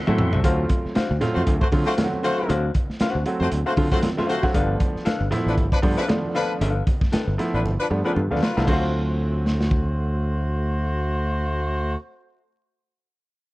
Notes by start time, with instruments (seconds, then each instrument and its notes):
Already playing: tonewheel organ E5 F#5 C6
0.07 fingered electric bass A2, upright piano F#3 A3 C4 E4, hollow-body jazz guitar C4 F#4 A4 E5, high tom, high conga
0.18 fingered electric bass F2, mid tom
0.33 fingered electric bass C2, hollow-body jazz guitar C4 F#4 A4 E5, floor tom
0.44 fingered electric bass D2, upright piano F#3 A3 C4 F4, hollow-body jazz guitar D4 F#4 C5 F5, kick, closed hi-hat, muted conga
0.69 kick, closed hi-hat, muted conga
0.85 muted fingered electric bass stroke, snare
0.95 hollow-body jazz guitar D4 F#4 C5 F5, muted fingered electric bass stroke, snare, closed hi-hat, high conga
1.11 fingered electric bass D2
1.21 upright piano F#3 A3 C4 F4, snare, closed hi-hat, low conga
1.34 fingered electric bass F2, horn section A3 F#4 C5
1.47 fingered electric bass D2, kick, closed hi-hat, muted conga
1.60 horn section A3 F#4 C5, kick
1.72 fingered electric bass D3, upright piano F#3 A3 C4 F4, kick, open hi-hat, muted conga
1.85 horn section A3 F#4 C5, hollow-body jazz guitar D4 F#4 C5 F5, snare
1.97 upright piano F#3 A3 C4 F4, snare, closed hi-hat, high conga
2.04 upright piano F#4
2.13 high conga
2.23 horn section A3 F#4 C5, hollow-body jazz guitar D4 F#4 C5 F5, closed hi-hat
2.49 fingered electric bass D2, hollow-body jazz guitar D4 F#4 C5 F5, closed hi-hat, muted conga
2.75 kick, closed hi-hat, muted conga
2.90 muted fingered electric bass stroke, snare
3.00 hollow-body jazz guitar D4 F#4 C5 F#5, muted fingered electric bass stroke, snare, closed hi-hat, high conga
3.15 fingered electric bass D2
3.26 upright piano F#3 A3 C4 F#4, closed hi-hat
3.40 fingered electric bass F2, horn section A3 F#4 C5
3.52 fingered electric bass D2, closed hi-hat, muted conga
3.66 horn section A3 F#4 C5, hollow-body jazz guitar D4 F#4 C5 F5
3.77 fingered electric bass D3, upright piano F#3 A3 C4 F4, kick, open hi-hat
3.92 upright piano F#3 A3 C4 F4, horn section A3 F#4 C5, hollow-body jazz guitar D4 F#4 C5 F#5, kick, snare
4.02 snare, closed hi-hat, high conga
4.17 upright piano F#3 A3 C4 F4, hollow-body jazz guitar D4 F#4 C5 F5, snare, high conga
4.29 horn section A3 F#4 C5, closed hi-hat
4.42 upright piano F#3 A3 C4 F#4, hollow-body jazz guitar D4 F#4 C5 F5, kick, snare
4.54 fingered electric bass G1, upright piano F3 A3 B3 D4, hollow-body jazz guitar D4 A4 B4 F5, kick, closed hi-hat, muted conga
4.80 kick, closed hi-hat, muted conga
4.95 muted fingered electric bass stroke, snare
5.05 hollow-body jazz guitar D4 A4 B4 F5, muted fingered electric bass stroke, snare, closed hi-hat, high conga
5.21 fingered electric bass G1
5.31 upright piano F3 A3 B3 E4, snare, closed hi-hat, low conga
5.46 fingered electric bass A1, horn section F3 D4 B4
5.58 fingered electric bass G1, kick, closed hi-hat, muted conga
5.72 horn section F3 D4 B4, kick
5.82 fingered electric bass G2, upright piano F3 A3 B3 D4, kick, open hi-hat, muted conga
5.97 horn section F3 D4 B4, hollow-body jazz guitar D4 A4 B4 F5
6.08 upright piano F3 A3 B3 D4, snare, closed hi-hat, high conga
6.25 high conga
6.35 horn section F3 D4 B4, hollow-body jazz guitar D4 A4 B4 F5, closed hi-hat
6.61 fingered electric bass G1, hollow-body jazz guitar D4 A4 B4 F5, closed hi-hat, muted conga
6.87 kick, closed hi-hat, muted conga
7.01 muted fingered electric bass stroke, kick, snare
7.12 hollow-body jazz guitar D4 A4 B4 G5, muted fingered electric bass stroke, snare, closed hi-hat, high conga
7.27 fingered electric bass G1
7.38 upright piano F3 A3 B3 E4, snare, closed hi-hat
7.54 fingered electric bass A1, horn section F3 D4 B4
7.65 fingered electric bass G1, muted conga
7.79 horn section F3 D4 B4
7.90 fingered electric bass G2, upright piano F3 A3 B3 D4, muted conga
8.04 upright piano F3 A3 B3 F4, horn section F3 D4 B4, hollow-body jazz guitar D4 A4 B4 G5
8.16 fingered electric bass G2, high conga
8.30 fingered electric bass D2, upright piano F3 A3 B3 D4, hollow-body jazz guitar D4 A4 B4 F5, high conga
8.41 horn section F#3 F4 B4, snare
8.57 fingered electric bass C2, upright piano F3 A3 B3 E4, hollow-body jazz guitar D4 A4 B4 F5, snare
8.66 fingered electric bass D2, upright piano F#3 A3 C4 F4, horn section A3 F#4 C5, hollow-body jazz guitar D4 F#4, kick, crash, muted conga
8.72 hollow-body jazz guitar C5 F5
9.46 snare
9.61 snare
9.71 kick